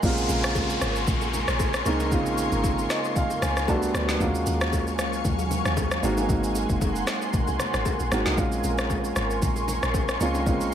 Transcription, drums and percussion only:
0.03 kick loud
0.03 low conga medium
0.03 shaker medium
0.17 shaker medium
0.29 high bongo soft
0.29 shaker medium
0.43 cross-stick loud
0.43 shaker soft
0.55 kick loud
0.55 high bongo medium
0.55 shaker medium
0.70 shaker medium
0.81 cross-stick medium
0.81 shaker loud
0.96 shaker soft
1.07 kick loud
1.07 low conga medium
1.07 shaker medium
1.21 high bongo soft
1.21 shaker soft
1.33 low bongo medium
1.33 low conga medium
1.33 shaker medium
1.48 cross-stick medium
1.48 shaker medium
1.59 kick medium
1.59 high bongo medium
1.59 low bongo medium
1.59 shaker medium
1.74 cross-stick loud
1.74 shaker medium
1.86 shaker medium
2.00 low bongo medium
2.00 shaker medium
2.12 kick loud
2.12 low conga medium
2.12 shaker medium
2.26 shaker medium
2.38 high bongo soft
2.38 shaker medium
2.52 shaker medium
2.64 kick medium
2.64 high bongo medium
2.64 shaker medium
2.79 shaker medium
2.90 cross-stick medium
2.90 snare medium
2.90 shaker loud
3.04 shaker soft
3.16 kick loud
3.16 low conga medium
3.16 shaker medium
3.30 high bongo medium
3.30 shaker medium
3.42 cross-stick loud
3.42 low bongo medium
3.42 low conga medium
3.42 shaker medium
3.57 cross-stick medium
3.57 shaker medium
3.68 kick medium
3.68 high bongo medium
3.68 low bongo medium
3.68 shaker medium
3.83 shaker medium
3.95 cross-stick loud
3.95 shaker medium
4.09 snare medium
4.09 low bongo medium
4.09 shaker medium
4.20 kick loud
4.20 low conga medium
4.20 shaker medium
4.35 shaker medium
4.47 high bongo soft
4.47 shaker medium
4.61 cross-stick loud
4.61 shaker medium
4.73 kick medium
4.73 high bongo medium
4.73 shaker medium
4.87 shaker medium
4.99 cross-stick medium
4.99 shaker medium
5.13 shaker soft
5.25 kick loud
5.25 low conga medium
5.25 shaker medium
5.39 high bongo medium
5.39 shaker medium
5.51 low bongo medium
5.51 low conga medium
5.51 shaker medium
5.65 cross-stick medium
5.65 shaker medium
5.77 kick medium
5.77 high bongo medium
5.77 low bongo medium
5.77 shaker medium
5.91 cross-stick medium
5.91 shaker medium
6.03 shaker medium
6.17 low bongo medium
6.17 shaker medium
6.29 kick loud
6.29 low conga medium
6.29 shaker medium
6.44 shaker medium
6.55 high bongo soft
6.55 shaker medium
6.69 kick medium
6.69 shaker soft
6.81 kick loud
6.81 high bongo medium
6.81 shaker medium
6.96 shaker medium
7.07 cross-stick medium
7.07 snare medium
7.07 shaker medium
7.22 shaker soft
7.33 kick loud
7.33 low conga medium
7.33 shaker medium
7.48 high bongo soft
7.48 shaker medium
7.59 cross-stick medium
7.59 low bongo medium
7.59 low conga medium
7.59 shaker medium
7.74 cross-stick medium
7.74 shaker medium
7.85 kick medium
7.85 high bongo medium
7.85 low bongo medium
7.85 shaker medium
8.00 shaker medium
8.12 cross-stick loud
8.12 shaker medium
8.26 snare medium
8.26 low bongo medium
8.26 shaker medium
8.38 kick loud
8.38 low conga medium
8.38 shaker medium
8.52 shaker medium
8.64 high bongo soft
8.64 shaker medium
8.78 cross-stick loud
8.78 shaker soft
8.90 kick medium
8.90 high bongo medium
8.90 shaker medium
9.04 shaker medium
9.16 cross-stick medium
9.16 shaker loud
9.30 shaker soft
9.42 kick loud
9.42 low conga medium
9.42 shaker medium
9.56 high bongo medium
9.56 shaker medium
9.68 low bongo medium
9.68 low conga medium
9.68 shaker medium
9.83 cross-stick medium
9.83 shaker medium
9.94 kick loud
9.94 high bongo medium
9.94 low bongo medium
9.94 shaker medium
10.09 cross-stick medium
10.09 shaker medium
10.21 shaker medium
10.35 low bongo medium
10.35 shaker medium
10.46 kick loud
10.46 low conga medium
10.46 shaker medium
10.61 shaker medium

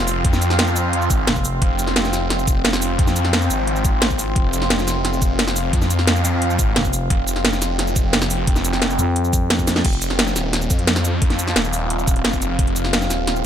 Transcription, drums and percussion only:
0.07 open hi-hat medium
0.07 cabasa medium
0.25 kick loud
0.25 closed hi-hat loud
0.33 snare soft
0.33 cabasa soft
0.42 closed hi-hat medium
0.42 cabasa medium
0.50 snare soft
0.59 snare loud
0.59 closed hi-hat loud
0.67 cabasa soft
0.76 closed hi-hat medium
0.76 cabasa medium
0.93 closed hi-hat loud
1.02 cabasa soft
1.10 kick loud
1.10 closed hi-hat medium
1.10 cabasa medium
1.27 snare loud
1.27 closed hi-hat medium
1.36 kick medium
1.36 cabasa soft
1.45 open hi-hat medium
1.45 cabasa medium
1.62 kick loud
1.62 closed hi-hat medium
1.79 closed hi-hat medium
1.79 cabasa medium
1.87 snare soft
1.96 snare loud
1.96 closed hi-hat loud
2.05 snare soft
2.05 cabasa soft
2.13 snare soft
2.13 closed hi-hat medium
2.13 cabasa medium
2.30 snare soft
2.30 closed hi-hat medium
2.39 cabasa soft
2.47 kick loud
2.47 closed hi-hat medium
2.47 cabasa medium
2.65 snare loud
2.65 closed hi-hat medium
2.73 snare medium
2.73 cabasa soft
2.82 open hi-hat medium
2.82 cabasa medium
2.99 kick loud
2.99 closed hi-hat medium
3.07 snare soft
3.07 cabasa soft
3.16 closed hi-hat medium
3.16 cabasa medium
3.25 snare soft
3.33 snare loud
3.33 closed hi-hat medium
3.42 cabasa soft
3.50 closed hi-hat medium
3.50 cabasa medium
3.67 closed hi-hat medium
3.76 cabasa soft
3.85 kick loud
3.85 closed hi-hat medium
3.85 cabasa medium
4.02 snare loud
4.02 closed hi-hat medium
4.10 kick medium
4.10 cabasa soft
4.19 open hi-hat medium
4.19 cabasa medium
4.36 kick loud
4.36 closed hi-hat medium
4.53 closed hi-hat medium
4.53 cabasa medium
4.62 snare soft
4.70 snare loud
4.70 closed hi-hat medium
4.79 snare soft
4.79 cabasa soft
4.88 snare soft
4.88 closed hi-hat medium
4.88 cabasa medium
5.05 snare soft
5.05 closed hi-hat medium
5.13 cabasa soft
5.22 kick loud
5.22 closed hi-hat medium
5.22 cabasa medium
5.39 snare loud
5.39 closed hi-hat medium
5.47 snare medium
5.47 cabasa soft
5.56 open hi-hat medium
5.56 cabasa medium
5.73 kick loud
5.73 closed hi-hat loud
5.82 snare soft
5.82 cabasa soft
5.90 closed hi-hat medium
5.90 cabasa medium
5.99 snare soft
6.07 snare loud
6.07 closed hi-hat medium
6.16 cabasa soft
6.25 closed hi-hat medium
6.25 cabasa medium
6.42 closed hi-hat medium
6.50 cabasa soft
6.59 kick loud
6.59 closed hi-hat medium
6.59 cabasa medium
6.76 snare loud
6.76 closed hi-hat medium
6.85 kick medium
6.85 cabasa soft
6.93 open hi-hat medium
6.93 cabasa medium
7.10 kick loud
7.10 closed hi-hat loud
7.27 closed hi-hat medium
7.27 cabasa medium
7.36 snare soft
7.45 snare loud
7.45 closed hi-hat loud
7.53 snare soft
7.53 cabasa soft
7.62 snare soft
7.62 closed hi-hat medium
7.62 cabasa medium
7.79 snare soft
7.79 closed hi-hat loud
7.87 cabasa soft
7.96 kick loud
7.96 closed hi-hat medium
7.96 cabasa medium
8.13 snare loud
8.13 closed hi-hat loud
8.22 snare medium
8.22 cabasa soft
8.30 open hi-hat medium
8.30 cabasa medium
8.47 kick loud
8.47 closed hi-hat loud
8.56 snare soft
8.56 cabasa soft
8.65 closed hi-hat medium
8.65 cabasa medium
8.73 snare soft
8.82 snare loud
8.82 closed hi-hat loud
8.90 cabasa soft
8.99 closed hi-hat medium
8.99 cabasa medium
9.16 closed hi-hat loud
9.25 cabasa soft
9.33 kick loud
9.33 closed hi-hat medium
9.33 cabasa medium
9.50 snare loud
9.50 closed hi-hat loud
9.59 kick medium
9.59 cabasa soft
9.67 snare medium
9.67 open hi-hat medium
9.67 cabasa medium
9.76 snare medium
9.85 kick loud
9.85 closed hi-hat loud
9.85 crash loud
9.93 closed hi-hat soft
10.02 closed hi-hat medium
10.02 cabasa medium
10.10 snare soft
10.19 snare loud
10.19 closed hi-hat loud
10.27 snare soft
10.27 cabasa soft
10.36 snare soft
10.36 closed hi-hat medium
10.36 cabasa medium
10.53 snare medium
10.53 closed hi-hat loud
10.62 cabasa soft
10.70 kick loud
10.70 closed hi-hat medium
10.70 cabasa medium
10.79 closed hi-hat soft
10.87 snare loud
10.87 closed hi-hat loud
10.96 snare medium
10.96 cabasa soft
11.05 closed hi-hat medium
11.05 cabasa medium
11.22 kick loud
11.22 closed hi-hat medium
11.30 snare soft
11.30 closed hi-hat soft
11.39 closed hi-hat medium
11.39 cabasa medium
11.47 snare soft
11.56 snare loud
11.56 closed hi-hat loud
11.65 cabasa soft
11.73 open hi-hat medium
11.73 cabasa medium
11.90 closed hi-hat medium
11.99 cabasa soft
12.07 kick loud
12.07 closed hi-hat medium
12.07 cabasa medium
12.16 closed hi-hat soft
12.25 snare loud
12.25 closed hi-hat medium
12.33 kick medium
12.33 cabasa soft
12.42 closed hi-hat medium
12.42 cabasa medium
12.59 kick loud
12.59 closed hi-hat medium
12.67 closed hi-hat soft
12.76 closed hi-hat medium
12.76 cabasa medium
12.85 snare soft
12.93 snare loud
12.93 closed hi-hat medium
13.02 snare soft
13.02 cabasa soft
13.10 snare soft
13.10 closed hi-hat medium
13.10 cabasa medium
13.27 snare medium
13.27 closed hi-hat medium
13.36 cabasa soft

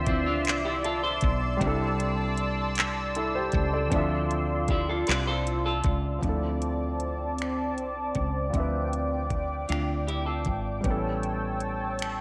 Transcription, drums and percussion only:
0.07 kick medium
0.07 closed hi-hat soft
0.45 clap loud
0.45 closed hi-hat medium
0.84 closed hi-hat medium
1.21 kick loud
1.21 closed hi-hat medium
1.61 kick loud
1.61 closed hi-hat medium
2.00 closed hi-hat medium
2.37 closed hi-hat medium
2.75 clap loud
2.75 closed hi-hat medium
3.15 closed hi-hat medium
3.52 kick loud
3.52 closed hi-hat medium
3.92 kick loud
3.92 closed hi-hat medium
4.31 closed hi-hat medium
4.68 kick medium
4.68 closed hi-hat soft
5.07 clap loud
5.07 closed hi-hat medium
5.47 closed hi-hat medium
5.84 kick loud
5.84 closed hi-hat medium
6.23 kick medium
6.23 closed hi-hat medium
6.62 closed hi-hat soft
7.00 closed hi-hat soft
7.38 finger snap medium
7.38 closed hi-hat medium
7.78 closed hi-hat soft
8.15 kick medium
8.15 closed hi-hat soft
8.54 kick medium
8.54 closed hi-hat medium
8.93 closed hi-hat soft
9.30 kick medium
9.30 closed hi-hat soft
9.69 finger snap medium
9.69 closed hi-hat medium
10.08 closed hi-hat soft
10.45 kick medium
10.45 closed hi-hat soft
10.84 kick medium
10.84 closed hi-hat medium
11.23 closed hi-hat soft
11.60 closed hi-hat soft
11.99 finger snap loud
11.99 closed hi-hat medium

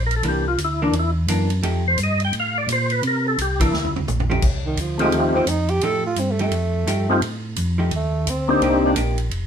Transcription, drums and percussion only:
0.11 ride medium
0.23 ride medium
0.58 hi-hat pedal medium
0.58 ride medium
0.93 ride medium
1.28 hi-hat pedal medium
1.28 ride medium
1.50 ride medium
1.63 ride medium
1.98 hi-hat pedal medium
1.98 ride medium
2.20 ride medium
2.33 ride medium
2.69 hi-hat pedal medium
2.69 ride medium
2.90 ride medium
3.03 ride medium
3.38 hi-hat pedal medium
3.38 ride medium
3.60 kick medium
3.60 ride medium
3.73 snare medium
3.84 floor tom medium
3.96 floor tom medium
4.08 hi-hat pedal medium
4.08 mid tom medium
4.20 floor tom medium
4.31 floor tom loud
4.42 kick medium
4.42 crash medium
4.77 hi-hat pedal medium
4.77 ride medium
4.99 ride medium
5.12 ride medium
5.47 hi-hat pedal medium
5.47 ride medium
5.68 ride medium
5.81 ride medium
6.16 hi-hat pedal medium
6.16 ride medium
6.39 ride medium
6.51 ride medium
6.87 hi-hat pedal medium
6.87 ride medium
7.22 ride medium
7.56 hi-hat pedal medium
7.56 ride medium
7.91 ride medium
8.27 hi-hat pedal medium
8.27 ride medium
8.62 ride medium
8.96 hi-hat pedal medium
8.96 ride medium
9.18 ride medium
9.31 ride medium

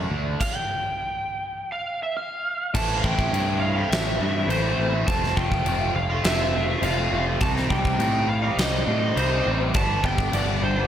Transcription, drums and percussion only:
0.41 kick loud
0.41 crash loud
2.75 kick loud
2.75 crash loud
2.75 crash medium
3.04 kick medium
3.19 kick loud
3.34 crash medium
3.92 snare loud
3.92 crash medium
4.50 crash medium
5.08 kick loud
5.08 crash medium
5.23 snare soft
5.37 kick medium
5.52 kick medium
5.66 crash medium
6.24 snare loud
6.24 crash medium
6.83 crash medium
7.41 kick loud
7.41 crash medium
7.57 snare soft
7.70 kick loud
7.85 kick loud
8.00 crash medium
8.58 snare loud
8.58 crash medium
9.17 crash medium
9.74 kick loud
9.74 crash medium
10.04 kick loud
10.18 kick loud
10.33 crash medium

